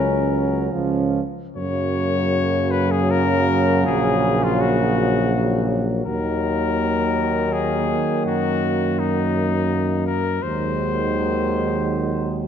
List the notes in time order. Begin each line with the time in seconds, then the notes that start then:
Already playing: C#2 F#3 C#4 A#4
0.73 C#2 F3 C#4
1.56 F#2 C#3 F#3 A#3 C#5
2.71 B4
2.92 G#4
3.11 A#4
3.86 A#1 G#4
4.44 F4
4.61 F#4
6.06 D#2 D#3 F#3 A#3 A#4
7.53 G#4
8.26 F#2 F#4
8.99 D#4
10.06 A#4
10.42 D#2 D#3 F#3 G#3 C5